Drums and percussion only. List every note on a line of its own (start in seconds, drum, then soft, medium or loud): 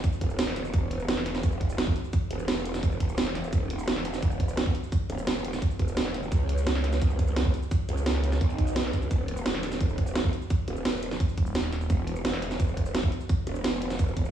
0.04 kick loud
0.04 closed hi-hat medium
0.04 cabasa medium
0.13 cabasa soft
0.21 kick medium
0.21 closed hi-hat medium
0.30 cabasa medium
0.39 snare loud
0.39 closed hi-hat medium
0.39 cabasa soft
0.47 snare medium
0.56 snare soft
0.56 open hi-hat medium
0.56 cabasa soft
0.65 cabasa soft
0.74 kick loud
0.74 closed hi-hat medium
0.74 cabasa soft
0.91 closed hi-hat medium
1.00 cabasa medium
1.08 snare loud
1.08 closed hi-hat medium
1.17 snare medium
1.26 snare soft
1.26 closed hi-hat loud
1.26 cabasa soft
1.35 snare soft
1.35 cabasa soft
1.43 kick loud
1.43 closed hi-hat medium
1.43 cabasa soft
1.52 cabasa soft
1.61 kick medium
1.61 closed hi-hat medium
1.70 cabasa medium
1.78 snare loud
1.78 closed hi-hat medium
1.78 cabasa soft
1.87 kick loud
1.96 open hi-hat medium
1.96 cabasa soft
2.04 cabasa soft
2.13 kick loud
2.13 closed hi-hat medium
2.13 cabasa soft
2.31 closed hi-hat medium
2.39 cabasa medium
2.48 snare loud
2.48 closed hi-hat medium
2.65 closed hi-hat medium
2.65 cabasa soft
2.74 snare soft
2.74 cabasa medium
2.83 kick loud
2.83 closed hi-hat medium
2.83 cabasa soft
2.92 cabasa soft
3.00 kick medium
3.00 closed hi-hat medium
3.09 cabasa medium
3.18 snare loud
3.18 closed hi-hat medium
3.18 cabasa soft
3.27 snare soft
3.35 snare soft
3.35 open hi-hat medium
3.35 cabasa soft
3.44 cabasa soft
3.53 kick loud
3.53 closed hi-hat medium
3.53 cabasa soft
3.70 closed hi-hat medium
3.79 cabasa medium
3.88 snare loud
3.88 closed hi-hat medium
3.96 snare medium
4.05 snare soft
4.05 closed hi-hat loud
4.05 cabasa soft
4.14 snare soft
4.14 cabasa medium
4.22 kick loud
4.22 closed hi-hat medium
4.22 cabasa medium
4.31 cabasa soft
4.40 kick medium
4.40 closed hi-hat medium
4.49 cabasa medium
4.57 snare loud
4.57 closed hi-hat medium
4.57 cabasa medium
4.66 kick loud
4.75 open hi-hat medium
4.75 cabasa soft
4.83 cabasa soft
4.92 kick loud
4.92 closed hi-hat medium
4.92 cabasa soft
5.10 closed hi-hat medium
5.18 cabasa medium
5.27 snare loud
5.27 closed hi-hat medium
5.45 closed hi-hat medium
5.45 cabasa soft
5.53 snare soft
5.53 cabasa medium
5.62 kick loud
5.62 closed hi-hat medium
5.62 cabasa medium
5.71 cabasa soft
5.79 kick medium
5.79 closed hi-hat medium
5.88 cabasa medium
5.97 snare loud
5.97 closed hi-hat medium
5.97 cabasa soft
6.06 snare soft
6.14 snare soft
6.14 open hi-hat medium
6.14 cabasa soft
6.23 cabasa soft
6.32 kick loud
6.32 closed hi-hat medium
6.32 cabasa medium
6.49 closed hi-hat loud
6.58 cabasa medium
6.67 snare loud
6.67 closed hi-hat medium
6.75 snare medium
6.84 snare soft
6.84 closed hi-hat loud
6.84 cabasa soft
6.93 snare soft
6.93 cabasa medium
7.02 kick loud
7.02 closed hi-hat medium
7.02 cabasa medium
7.10 cabasa soft
7.19 kick medium
7.19 closed hi-hat medium
7.28 cabasa medium
7.36 snare loud
7.36 closed hi-hat medium
7.36 cabasa medium
7.45 kick loud
7.54 open hi-hat medium
7.54 cabasa soft
7.63 cabasa soft
7.71 kick loud
7.71 closed hi-hat medium
7.71 cabasa medium
7.89 closed hi-hat medium
7.97 cabasa medium
8.06 snare loud
8.06 closed hi-hat medium
8.15 snare medium
8.24 closed hi-hat loud
8.24 cabasa soft
8.32 snare soft
8.32 cabasa medium
8.41 kick loud
8.41 closed hi-hat medium
8.41 cabasa medium
8.50 cabasa soft
8.58 kick medium
8.58 closed hi-hat medium
8.67 cabasa medium
8.76 snare loud
8.76 closed hi-hat medium
8.76 cabasa medium
8.85 snare soft
8.93 kick medium
8.93 snare soft
8.93 open hi-hat medium
8.93 cabasa soft
9.02 cabasa soft
9.11 kick loud
9.11 closed hi-hat medium
9.11 cabasa soft
9.28 closed hi-hat medium
9.37 cabasa medium
9.46 snare loud
9.46 closed hi-hat medium
9.54 snare medium
9.63 snare soft
9.63 closed hi-hat loud
9.63 cabasa soft
9.72 snare soft
9.72 cabasa medium
9.81 kick loud
9.81 closed hi-hat medium
9.81 cabasa medium
9.89 cabasa soft
9.98 kick medium
9.98 closed hi-hat medium
10.07 cabasa medium
10.15 snare loud
10.15 closed hi-hat medium
10.15 cabasa medium
10.24 kick loud
10.33 open hi-hat medium
10.33 cabasa soft
10.42 cabasa soft
10.50 kick loud
10.50 closed hi-hat medium
10.50 cabasa soft
10.68 closed hi-hat medium
10.76 cabasa medium
10.85 snare loud
10.85 closed hi-hat medium
11.03 closed hi-hat loud
11.03 cabasa soft
11.11 snare soft
11.11 cabasa soft
11.20 kick loud
11.20 closed hi-hat medium
11.20 cabasa soft
11.29 cabasa soft
11.38 kick medium
11.38 closed hi-hat medium
11.46 cabasa medium
11.55 snare loud
11.55 closed hi-hat medium
11.55 cabasa soft
11.64 snare medium
11.72 snare soft
11.72 open hi-hat medium
11.72 cabasa soft
11.81 cabasa soft
11.90 kick loud
11.90 closed hi-hat medium
11.90 cabasa soft
12.07 closed hi-hat medium
12.16 cabasa medium
12.25 snare loud
12.25 closed hi-hat medium
12.34 snare medium
12.42 snare soft
12.42 closed hi-hat medium
12.42 cabasa soft
12.51 snare soft
12.51 cabasa soft
12.60 kick loud
12.60 closed hi-hat medium
12.60 cabasa soft
12.68 cabasa soft
12.77 kick medium
12.77 closed hi-hat medium
12.86 cabasa medium
12.95 snare loud
12.95 closed hi-hat medium
12.95 cabasa soft
13.03 kick loud
13.12 open hi-hat medium
13.12 cabasa soft
13.21 cabasa soft
13.29 kick loud
13.29 closed hi-hat medium
13.29 cabasa soft
13.47 closed hi-hat medium
13.56 cabasa medium
13.64 snare loud
13.64 closed hi-hat medium
13.82 closed hi-hat medium
13.82 cabasa soft
13.90 snare soft
13.90 cabasa soft
13.99 kick loud
13.99 closed hi-hat medium
13.99 cabasa soft
14.08 cabasa soft
14.17 kick medium
14.17 closed hi-hat medium
14.25 cabasa medium